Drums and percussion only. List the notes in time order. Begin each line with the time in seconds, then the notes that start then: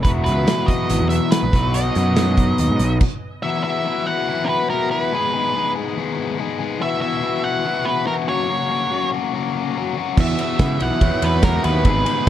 0.05 kick, closed hi-hat
0.26 closed hi-hat
0.47 snare, closed hi-hat
0.68 kick, closed hi-hat
0.90 closed hi-hat
1.10 closed hi-hat
1.32 snare, closed hi-hat
1.53 kick, snare, closed hi-hat
1.74 closed hi-hat
1.95 closed hi-hat
2.16 snare, closed hi-hat
2.37 kick, closed hi-hat
2.58 closed hi-hat
2.79 closed hi-hat
3.01 kick, crash
10.17 kick, crash
10.39 ride
10.59 kick, snare, ride
10.80 ride
11.01 kick, ride
11.22 ride
11.42 kick, snare, ride
11.64 ride
11.85 kick, ride
12.06 ride